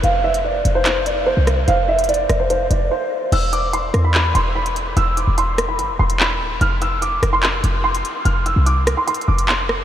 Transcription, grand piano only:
\new Staff \with { instrumentName = "Grand piano" } { \time 4/4 \key f \lydian \tempo 4 = 146 f''8 e''8 d''8. c''16 c''8 d''8 c''4 | f''8 e''8 d''8. c''16 c''8 d''8 c''4 | e'''8 d'''8 c'''8. b''16 b''8 c'''8 b''4 | e'''8 d'''8 c'''8. b''16 b''8 c'''8 b''4 |
f'''8 e'''8 d'''8. c'''16 c'''8 d'''8 c'''4 | f'''8 e'''8 d'''8. c'''16 c'''8 d'''8 c'''4 | }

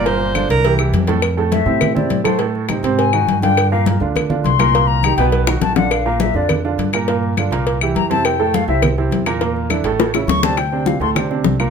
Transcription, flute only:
\new Staff \with { instrumentName = "Flute" } { \time 4/4 \key f \major \tempo 4 = 205 r1 | r4 e''4. d''4 c''8 | r2 aes''4. g''8~ | g''8 f''8 r2 c'''4~ |
c'''8 bes''4 g''8 r4 a''8 fis''8 | f''4 e''8 d''8 r2 | r2. bes''8 a''8 | g''4 f''8 e''8 r2 |
r2. cis'''8 a''8 | g''4 f''8 c'''8 r2 | }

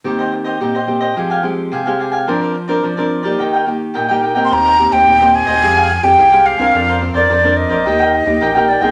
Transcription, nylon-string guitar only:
\new Staff \with { instrumentName = "Nylon-string guitar" } { \time 4/4 \key ees \major \tempo 4 = 108 << { <bes c' g'>4 <bes c' g'>16 r16 <bes c' g'>8 <aes c' g'>8 <aes c' g'>8. <aes c' g'>8. | <c' d' bes'>8 r16 <c' d' bes'>8 <c' d' bes'>8 <bes ees' g'>8. <bes ees' g'>8. <bes ees' g'>8 <bes c' g'>16~ | <bes c' g'>8 <bes c' g'>8. <bes c' g'>8. <aes c' g'>8 r16 <aes c' g'>8 <aes c' g'>8 <c' d' bes'>16~ | <c' d' bes'>8 <c' d' bes'>8. <c' d' bes'>8. <bes ees' g'>8. <bes ees' g'>8 <bes ees' g'>8 <c' ees' aes'>16 | } \\ { ees4 bes,4 f4 c4 | f4 f4 ees4 bes,4 | ees4 bes,4 f4 c4 | f4 f4 ees4 bes,4 | } >> }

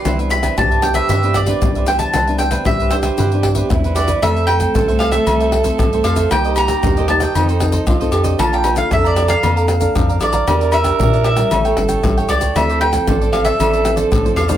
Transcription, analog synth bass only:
\new Staff \with { instrumentName = "Analog synth bass" } { \clef bass \time 4/4 \key c \major \tempo 4 = 115 c,4 c,4 g,4 c,4 | c,4 c,4 g,4 e,4 | \key f \major f,4 c,4 c,4 c,8 f,8 | c,4 ees,4 f,4 c,8 f,8 |
bes,,4 f,4 f,4 f,8 bes,,8 | e,4 bes,4 a,,8 g,,8 a,,8 cis,8 | d,4 a,,4 a,,4 a,,8 e,8 | }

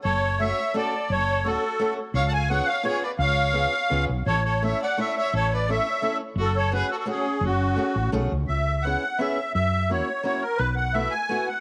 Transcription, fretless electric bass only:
\new Staff \with { instrumentName = "Fretless electric bass" } { \clef bass \time 3/4 \key fis \minor \tempo 4 = 171 fis,,2 r4 | fis,,2 r4 | cis,2 r4 | cis,2 cis,8 b,,8 |
a,,2 r4 | a,,2 r4 | fis,,2 r4 | fis,,4. a,,8 b,,8 cis,8 |
\key cis \minor cis,2 r4 | fis,2 r4 | b,,2 r4 | }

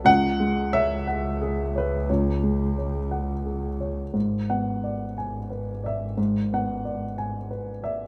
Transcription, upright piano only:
\new Staff \with { instrumentName = "Upright piano" } { \time 6/8 \key cis \phrygian \tempo 4. = 59 << { fis''4 e''8 r4 b'8 | cis''2~ cis''8 r8 | r8 fis''4 r4 e''8 | r8 fis''4 r4 e''8 | } \\ { cis,8 gis8 cis''8 fis''8 gis'8 cis''8 | cis,8 gis8 cis''8 fis''8 gis'8 cis''8 | gis,8 b8 d''8 gis''8 b'8 d''8 | gis,8 b8 d''8 gis''8 b'8 d''8 | } >> }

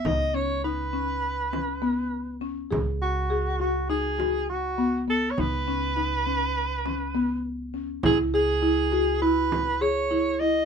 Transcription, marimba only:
\new Staff \with { instrumentName = "Marimba" } { \time 9/8 \key cis \minor \tempo 4. = 68 dis'8 cis'8 dis'8 cis'4 cis'8 b4 cis'8 | gis'4 gis'8 fis'8 dis'8 fis'4 b8 b8 | dis'8 cis'8 dis'8 cis'4 cis'8 b4 cis'8 | e'8 gis'8 e'8 fis'8 e'4 gis'8 e'8 e'8 | }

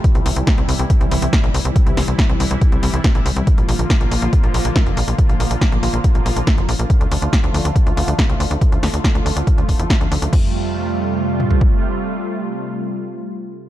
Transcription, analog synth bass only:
\new Staff \with { instrumentName = "Analog synth bass" } { \clef bass \time 4/4 \key f \major \tempo 4 = 140 r16 c,16 c,16 c,16 r16 c,16 c,16 c,16 r16 c,16 c,16 c,16 r16 bes,,16 c,16 c,16 | r16 c,16 c,16 c,16 r16 c,16 c,16 c,16 r16 c,16 c,16 c,16 r16 bes,,16 c,16 c,16 | r16 bes,,16 bes,,16 bes,,16 r16 bes,,16 bes,,16 bes,,16 r16 bes,,16 bes,,16 bes,,16 r16 f,,16 bes,,16 bes,,16 | r16 bes,,16 bes,,16 bes,,16 r16 bes,,16 bes,,16 bes,,16 r16 bes,,16 bes,,16 bes,,16 r16 f,,16 bes,,16 bes,,16 |
r16 d,16 d,16 d,16 r16 d,16 d,16 d,16 r16 d,16 d,16 d,16 r16 c,16 d,16 d,16 | r16 d,16 d,16 d,16 r16 d,16 d,16 d,16 r16 d,16 d,,16 e,16 r16 d,16 d,16 d,16 | f,2. r4 | r1 | }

